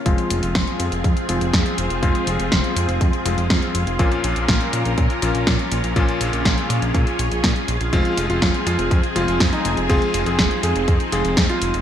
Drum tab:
HH |xxxxxxxxxxxxxxxx|xxxxxxxxxxxxxxxx|xxxxxxxxxxxxxxxx|xxxxxxxxxxxxxxxx|
SD |----o-------o---|----o-------o---|----o-------o---|----o-------o---|
BD |o---o---o---o---|o---o---o---o---|o---o---o---o---|o---o---o---o---|

HH |xxxxxxxxxxxxxxxx|xxxxxxxxxxxxxxxx|
SD |----o-------o---|----o-------o---|
BD |o---o---o---o---|o---o---o---o---|